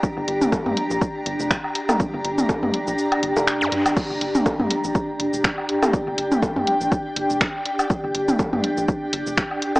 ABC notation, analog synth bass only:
X:1
M:4/4
L:1/16
Q:"Swing 16ths" 1/4=122
K:Gm
V:1 name="Analog synth bass" clef=bass
z G,,, G,,,2 z G,, z B,,, z2 G,,, F,,,2 z3 | z G,,, G,,,2 z G,, z B,,, z2 G,,, F,,,2 G,, G,, G,,, | z G,,, G,,,2 z G,, z B,,, z2 G,,, F,,,2 z3 | z G,,, G,,,2 z G,, z B,,, z2 G,,, F,,,2 z3 |
z G,,, G,,,2 z G,, z B,,, z2 G,,, F,,,2 z3 |]